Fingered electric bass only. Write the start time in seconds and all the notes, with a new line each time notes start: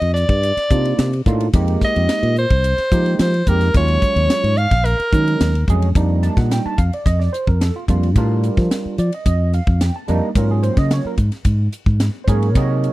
0.02 F2
0.29 G2
0.57 muted fingered electric bass stroke
0.71 C3
0.99 C3
1.26 A2
1.54 F2
1.96 F2
2.23 A#2
2.50 C2
2.92 F3
3.19 F3
3.47 F2
3.75 D#2
4.16 D#2
4.44 G#2
4.71 A#1
5.00 muted fingered electric bass stroke
5.13 D#3
5.41 D#2
5.68 F2
5.95 F2
6.37 A#2
6.65 muted fingered electric bass stroke
6.78 F2
7.06 F2
7.48 F2
7.88 F2
8.16 A2
8.57 F3
8.86 muted fingered electric bass stroke
8.98 F3
9.26 F2
9.67 F2
10.09 F2
10.36 G#2
10.77 C#3
11.05 muted fingered electric bass stroke
11.18 G#2
11.45 G#2
11.86 G#2
12.27 G#2
12.55 C3